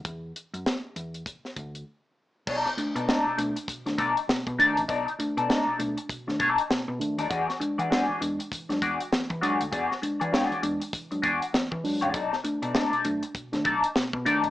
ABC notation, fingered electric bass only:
X:1
M:4/4
L:1/16
Q:"Swing 16ths" 1/4=99
K:E
V:1 name="Fingered electric bass" clef=bass
E,,2 z F,, z2 E,,2 z2 =D,,2 z4 | B,,, z2 B,, z2 B,,, z3 B,,, z2 B,, z A,,, | B,,, z2 B,, z2 B,,, z3 B,,, z2 B,, z D,, | E,, z2 E, z2 E,, z3 E,, z2 E, z =D,, |
E,, z2 E, z2 E,, z3 E,, z2 E, z A,,, | B,,, z2 B,, z2 B,,, z3 B,,, z2 B,, z A,,, |]